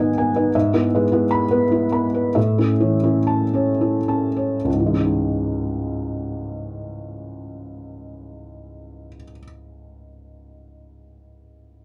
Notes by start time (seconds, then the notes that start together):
Already playing: G#2 D#3 B3 B4 D#5 G#5
0.00 D#4
0.18 B3 G#5
0.36 D#4 B4
0.55 G#2 E5
0.74 B3 E4
0.95 G#3 B4
1.12 B3 E4
1.31 B5
1.51 B3 B4
1.72 E4
1.92 B3 B5
2.14 B4
2.35 A2 E5
2.58 C#4 E4
2.80 E3 C#5
3.03 C#4 E4
3.27 A5
3.54 C#4 C#5
3.81 E4
4.08 C#4 A5
4.36 C#5
4.65 C#2
4.72 G#2
4.80 E3
4.86 G#3
4.94 C#4
5.01 D#4